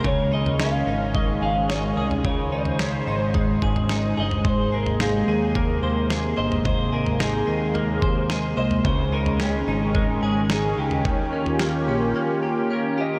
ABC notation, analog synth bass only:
X:1
M:4/4
L:1/8
Q:1/4=109
K:Ab
V:1 name="Analog synth bass" clef=bass
D,,3 A,,,2 A,,,2 C,, | D,,3 A,,,2 A,,,2 G,,, | A,,,3 E,,2 E,,2 G,,, | A,,,3 E,,2 E,,2 C,, |
D,,3 A,,,2 A,,,2 D,, | E,,3 B,,, z4 |]